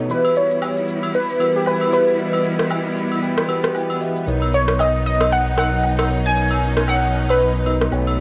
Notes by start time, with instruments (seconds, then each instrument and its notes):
Already playing: tine electric piano B2 B3 D#4 A4 C#5
0.09 tine electric piano E3 B3 F#4 G4 D#5, string section E3 G3 B3 E4, synth pluck B4, shaker
0.17 tine electric piano E5
0.25 high agogo, shaker
0.36 synth pluck C#5, shaker
0.51 shaker
0.62 high agogo, low woodblock, shaker
0.77 shaker
0.88 shaker
1.03 high agogo, shaker
1.14 synth pluck B4, shaker
1.29 shaker
1.39 tine electric piano E3 B3 F#4 G4 A#4, high agogo, shaker
1.55 synth pluck G4, shaker
1.66 synth pluck B4, low woodblock, shaker
1.81 high agogo, shaker
1.91 tine electric piano E3 B3 F#4 G4 E5, synth pluck B4, shaker
2.07 shaker
2.17 tine electric piano E3 B3 F#4 G4 D5, shaker
2.26 tine electric piano D#5
2.33 high agogo, shaker
2.44 shaker
2.59 cross-stick, shaker
2.71 high agogo, low woodblock, shaker
2.86 shaker
2.97 tine electric piano B5, shaker
3.12 high agogo, shaker
3.23 tine electric piano G5, shaker
3.38 cross-stick, shaker
3.48 tine electric piano E3 B3 F#4 G4 B4, high agogo, shaker
3.64 cross-stick, shaker
3.75 tine electric piano G5, low woodblock, shaker
3.90 high agogo, shaker
4.00 tine electric piano E3 B3 F#4 G4 D#5 E5, shaker
4.16 shaker
4.26 sub bass B1, tine electric piano B2 B3 D#4 A#4 C#5, string section F#3 D#4, shaker
4.42 high agogo, shaker
4.53 synth pluck C#5, shaker
4.68 cross-stick, shaker
4.79 synth pluck D#5, high agogo, low woodblock, shaker
4.94 shaker
5.05 synth pluck D#5, shaker
5.20 cross-stick, high agogo, shaker
5.31 synth pluck F#5, shaker
5.47 shaker
5.56 tine electric piano B2 B3 D#4 A#4 D#5, synth pluck F#5, cross-stick, high agogo, shaker
5.73 shaker
5.83 low woodblock, shaker
5.99 cross-stick, high agogo, shaker
6.09 tine electric piano B2 B3 D#4 A#4 C#5, shaker
6.25 synth pluck G#5, shaker
6.35 tine electric piano B2 B3 D#4 A#4 C#5, string section C#4, shaker
6.51 high agogo, shaker
6.62 shaker
6.77 cross-stick, shaker
6.88 synth pluck F#5, high agogo, low woodblock, shaker
7.03 shaker
7.14 shaker
7.29 synth pluck B4, high agogo, shaker
7.40 shaker
7.55 shaker
7.65 tine electric piano B2 B3 D#4 A#4 D#5, high agogo, shaker
7.81 cross-stick, shaker
7.91 sub bass B1, tine electric piano B2 B3 D#4 A4 C#5, string section A3 B3, low woodblock, shaker
8.07 high agogo, shaker
8.17 tine electric piano B2